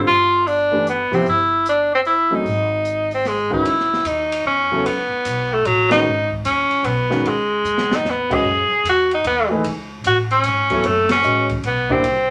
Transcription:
0.07 upright bass G1, tenor saxophone F4, open hi-hat
0.47 tenor saxophone D4, open hi-hat
0.71 grand piano E3 A3 D4 G4 B4
0.87 tenor saxophone B3, closed hi-hat
1.11 grand piano C3 F3 B3 E4 G4, tenor saxophone C4, muted upright bass stroke, open hi-hat
1.25 upright bass G1, tenor saxophone E4, open hi-hat
1.66 tenor saxophone D4, closed hi-hat
1.95 tenor saxophone C4
2.05 tenor saxophone E4, open hi-hat
2.30 grand piano F#3 A3 C4 D#4 G#4
2.35 tenor saxophone D#4
2.45 upright bass G#1, open hi-hat
2.85 closed hi-hat
3.11 tenor saxophone C4, open hi-hat
3.25 tenor saxophone G#3, snare, open hi-hat
3.50 grand piano D#3 G#3 C#4 F#4 B4, tenor saxophone E4, kick
3.65 upright bass C#2, ride
3.80 snare
3.93 snare
4.04 upright bass D#2, tenor saxophone D#4, hi-hat pedal, ride
4.32 ride
4.44 upright bass E2, tenor saxophone C#4
4.72 grand piano C#3 F#3 B3 E4 A4
4.84 upright bass C#2, tenor saxophone B3, ride
5.11 muted upright bass stroke
5.25 upright bass B1, hi-hat pedal, ride
5.53 tenor saxophone A3
5.65 upright bass A1, tenor saxophone F#3, ride
5.90 grand piano D#3 G#3 C#4 F#4 B4, tenor saxophone D#4, snare, ride
6.05 upright bass G#1
6.31 kick
6.44 upright bass D#2, tenor saxophone C#4, hi-hat pedal, ride
6.71 muted upright bass stroke, ride
6.83 upright bass B1, tenor saxophone B3, ride
7.10 grand piano D#3 G#3 C#4 F#4 B4, snare
7.24 upright bass C#2, tenor saxophone G#3, ride
7.64 upright bass D#2, hi-hat pedal
7.78 snare
7.91 snare
7.96 tenor saxophone D#4
8.04 upright bass E2, snare
8.10 tenor saxophone B3
8.30 grand piano G#3 C#4 F#4 B4 D#5, kick, crash
8.34 tenor saxophone G#4
8.44 upright bass F#2
8.70 muted upright bass stroke
8.84 upright bass E2, hi-hat pedal, ride
8.89 tenor saxophone F#4
9.11 tenor saxophone D#4, ride
9.24 upright bass D#2, tenor saxophone B3, ride
9.50 grand piano E3 A3 D#4 G#4 B4
9.64 upright bass C#2, ride
10.04 upright bass A1, tenor saxophone F#4, hi-hat pedal, ride
10.31 tenor saxophone C#4, ride
10.43 upright bass G#1, hi-hat pedal, ride
10.70 grand piano F#3 B3 E4 A4 C#5, kick, ride
10.83 upright bass F#1, tenor saxophone A3, ride
11.09 tenor saxophone C#4, snare, ride
11.22 upright bass A1, grand piano G#3 C#4 F#4 B4 D#5, hi-hat pedal
11.49 kick, ride
11.62 upright bass B1, tenor saxophone B3, ride
11.89 grand piano A#3 D4 E4 G4 D5, tenor saxophone C4, kick
12.02 upright bass C2, ride

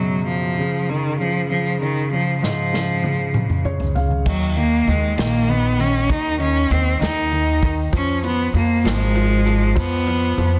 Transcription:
Already playing: grand piano F#2 B2 C#3 F#3, cello F#3
0.27 cello F3
0.58 grand piano C#3
0.89 grand piano C#3, cello D#3
1.20 grand piano C#3, cello F3
1.50 grand piano C#3, cello F3
1.81 grand piano C#3, cello D#3
2.12 grand piano C#3, cello F3
2.43 grand piano G#2, cello F3, snare
2.73 grand piano C#3, snare
3.04 grand piano C#3, high tom
3.34 grand piano C#3, mid tom
3.50 mid tom
3.65 grand piano C#3 C#5, mid tom
3.80 floor tom
3.95 grand piano C#3 F5, floor tom
4.11 floor tom
4.26 upright bass D#2, grand piano D#3, cello F#3, kick, crash
4.57 grand piano D#3, cello A#3, ride
4.87 upright bass D#2, grand piano D#3, cello G#3, ride
5.18 upright bass A#1, grand piano D#3, cello A#3, snare, ride
5.48 grand piano D#3, cello B3, ride
5.79 grand piano D#3, cello C#4, ride
6.09 upright bass D#2, grand piano D#3, cello D#4, kick, ride
6.40 grand piano D#3, cello C#4, ride
6.71 upright bass D#2, grand piano D#3, cello C4, ride
7.01 upright bass D#2, grand piano D#3, cello D#4, snare, ride
7.32 grand piano D#3, ride
7.62 grand piano D#3, kick, ride
7.93 upright bass F2, grand piano F3, cello C#4, kick, ride
8.24 grand piano F3, cello B3, ride
8.53 upright bass F2, grand piano F3, cello A#3, ride
8.84 upright bass G#1, grand piano F3, cello G#3, snare, ride
9.15 grand piano F3, ride
9.46 grand piano F3, ride
9.75 upright bass F2, grand piano F3, cello B3, kick, ride
10.07 grand piano F3, ride
10.38 upright bass F2, grand piano F3, ride

